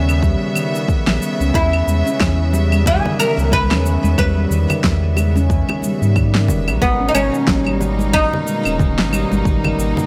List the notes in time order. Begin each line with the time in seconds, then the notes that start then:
Already playing: D#2 C#3 D#3 G3 B3 E5
0.09 cabasa, claves
0.22 G3, kick, cabasa
0.42 G3
0.55 D#3, cabasa, claves
0.75 cabasa
0.88 kick, cabasa
1.07 A#1, snare, claves
1.21 G3, cabasa
1.40 C#2 C#4, cabasa
1.54 E2 E4, kick, cabasa
1.73 claves
1.87 E2 G#3, cabasa
2.06 C#4, cabasa
2.20 E2 E3, kick, snare, cabasa, claves
2.53 G3, high bongo, cabasa
2.72 G3, high conga, cabasa, claves
2.86 D#3 G#4, kick, cabasa
3.06 low conga
3.19 A#4, cabasa, claves
3.38 C#2, cabasa
3.52 G#3 B4, kick, low conga, cabasa
3.71 E2 C#4, snare, claves
3.85 D#3, cabasa
4.04 E2, high conga, cabasa
4.18 E2 G3 B4, kick, cabasa, claves
4.37 G3
4.51 E2 D#3, cabasa
4.70 low conga, cabasa, claves
4.84 E2, kick, snare, cabasa
5.16 G#3, high bongo, cabasa, claves
5.36 C#4, high conga, cabasa
5.50 D#3, kick, cabasa
5.68 high bongo, high conga, claves
5.82 G3, high conga, cabasa
6.02 G#2 G3, cabasa
6.16 D#3, kick, cabasa, claves
6.35 snare
6.48 E1, low conga, cabasa
6.68 B1, high bongo, cabasa, claves
6.81 G#1 B2 G#3 A#3 B3 D#4, kick, cabasa
7.01 C#4
7.09 D#4
7.15 G#1 D#3 C#4, cabasa, claves
7.34 cabasa
7.48 G#1 G3, kick, snare, cabasa
7.67 G3, claves
7.81 D#3, high bongo, cabasa
7.99 high conga, cabasa
8.13 D#4, kick, cabasa, claves
8.33 low conga
8.47 G#3, cabasa
8.65 D#1 C#4, cabasa, claves
8.79 D#3, kick, low conga, cabasa
8.98 G#1, snare
9.13 G3, cabasa, claves
9.32 G#1 G3, high conga, cabasa
9.45 G#1 D#3, kick, cabasa
9.64 low conga, claves
9.78 G#1, cabasa
9.97 low conga, cabasa